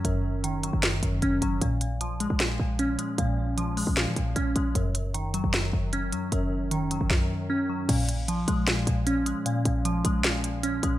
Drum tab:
CC |--------|--------|--------|--------|
HH |x-xxxxxx|xxxxx-xx|x-xoxxxx|xxxxx-xx|
SD |----o---|----o---|----o---|----o---|
BD |--------|--------|--------|--------|

CC |--------|x-------|--------|
HH |x-xx----|xxxxxxxx|xxxxxxxx|
SD |----o---|----o---|----o---|
BD |----o---|--------|--------|